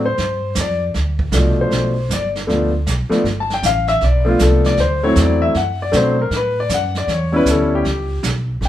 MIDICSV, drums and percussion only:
0, 0, Header, 1, 2, 480
1, 0, Start_track
1, 0, Tempo, 383142
1, 228, Time_signature, 4, 2, 24, 8
1, 10881, End_track
2, 0, Start_track
2, 0, Title_t, "Drums"
2, 220, Note_on_c, 9, 25, 46
2, 220, Note_on_c, 9, 38, 41
2, 346, Note_off_c, 9, 38, 0
2, 689, Note_on_c, 9, 38, 53
2, 692, Note_on_c, 9, 44, 62
2, 814, Note_off_c, 9, 38, 0
2, 817, Note_off_c, 9, 44, 0
2, 1179, Note_off_c, 9, 25, 0
2, 1179, Note_on_c, 9, 25, 46
2, 1179, Note_on_c, 9, 38, 38
2, 1304, Note_off_c, 9, 38, 0
2, 1491, Note_on_c, 9, 36, 55
2, 1616, Note_off_c, 9, 36, 0
2, 1652, Note_on_c, 9, 38, 57
2, 1655, Note_on_c, 9, 44, 59
2, 1777, Note_off_c, 9, 38, 0
2, 1780, Note_off_c, 9, 44, 0
2, 2142, Note_off_c, 9, 25, 0
2, 2142, Note_on_c, 9, 25, 48
2, 2142, Note_on_c, 9, 38, 39
2, 2268, Note_off_c, 9, 38, 0
2, 2637, Note_on_c, 9, 38, 59
2, 2639, Note_on_c, 9, 44, 60
2, 2762, Note_off_c, 9, 38, 0
2, 2764, Note_off_c, 9, 44, 0
2, 2950, Note_on_c, 9, 38, 35
2, 3075, Note_off_c, 9, 38, 0
2, 3120, Note_off_c, 9, 25, 0
2, 3120, Note_on_c, 9, 25, 41
2, 3120, Note_on_c, 9, 38, 38
2, 3245, Note_off_c, 9, 38, 0
2, 3592, Note_on_c, 9, 38, 57
2, 3595, Note_on_c, 9, 44, 53
2, 3717, Note_off_c, 9, 38, 0
2, 3720, Note_off_c, 9, 44, 0
2, 3904, Note_on_c, 9, 38, 41
2, 4029, Note_off_c, 9, 38, 0
2, 4071, Note_off_c, 9, 25, 0
2, 4071, Note_on_c, 9, 25, 43
2, 4071, Note_on_c, 9, 38, 41
2, 4196, Note_off_c, 9, 38, 0
2, 4384, Note_on_c, 9, 38, 36
2, 4510, Note_off_c, 9, 38, 0
2, 4547, Note_on_c, 9, 38, 55
2, 4550, Note_on_c, 9, 44, 60
2, 4672, Note_off_c, 9, 38, 0
2, 4675, Note_off_c, 9, 44, 0
2, 4853, Note_on_c, 9, 38, 36
2, 4978, Note_off_c, 9, 38, 0
2, 5023, Note_off_c, 9, 25, 0
2, 5023, Note_on_c, 9, 25, 43
2, 5023, Note_on_c, 9, 38, 40
2, 5148, Note_off_c, 9, 38, 0
2, 5501, Note_on_c, 9, 38, 61
2, 5504, Note_on_c, 9, 44, 59
2, 5626, Note_off_c, 9, 38, 0
2, 5629, Note_off_c, 9, 44, 0
2, 5818, Note_on_c, 9, 38, 38
2, 5943, Note_off_c, 9, 38, 0
2, 5975, Note_off_c, 9, 25, 0
2, 5975, Note_on_c, 9, 25, 45
2, 5975, Note_on_c, 9, 38, 43
2, 6100, Note_off_c, 9, 38, 0
2, 6459, Note_on_c, 9, 38, 59
2, 6461, Note_on_c, 9, 44, 52
2, 6584, Note_off_c, 9, 38, 0
2, 6586, Note_off_c, 9, 44, 0
2, 6946, Note_off_c, 9, 25, 0
2, 6946, Note_on_c, 9, 25, 43
2, 6946, Note_on_c, 9, 38, 39
2, 7072, Note_off_c, 9, 38, 0
2, 7426, Note_on_c, 9, 38, 65
2, 7429, Note_on_c, 9, 44, 51
2, 7551, Note_off_c, 9, 38, 0
2, 7554, Note_off_c, 9, 44, 0
2, 7905, Note_off_c, 9, 25, 0
2, 7905, Note_on_c, 9, 25, 50
2, 7905, Note_on_c, 9, 38, 42
2, 8030, Note_off_c, 9, 38, 0
2, 8386, Note_on_c, 9, 38, 55
2, 8388, Note_on_c, 9, 44, 56
2, 8511, Note_off_c, 9, 38, 0
2, 8513, Note_off_c, 9, 44, 0
2, 8702, Note_on_c, 9, 38, 35
2, 8827, Note_off_c, 9, 38, 0
2, 8866, Note_off_c, 9, 25, 0
2, 8866, Note_on_c, 9, 25, 48
2, 8866, Note_on_c, 9, 38, 42
2, 8991, Note_off_c, 9, 38, 0
2, 9344, Note_on_c, 9, 38, 59
2, 9347, Note_on_c, 9, 44, 65
2, 9469, Note_off_c, 9, 38, 0
2, 9472, Note_off_c, 9, 44, 0
2, 9833, Note_off_c, 9, 25, 0
2, 9833, Note_on_c, 9, 25, 41
2, 9833, Note_on_c, 9, 38, 45
2, 9958, Note_off_c, 9, 38, 0
2, 10313, Note_on_c, 9, 38, 60
2, 10315, Note_on_c, 9, 44, 53
2, 10438, Note_off_c, 9, 38, 0
2, 10441, Note_off_c, 9, 44, 0
2, 10795, Note_off_c, 9, 25, 0
2, 10795, Note_on_c, 9, 25, 38
2, 10795, Note_on_c, 9, 38, 38
2, 10881, Note_off_c, 9, 25, 0
2, 10881, Note_off_c, 9, 38, 0
2, 10881, End_track
0, 0, End_of_file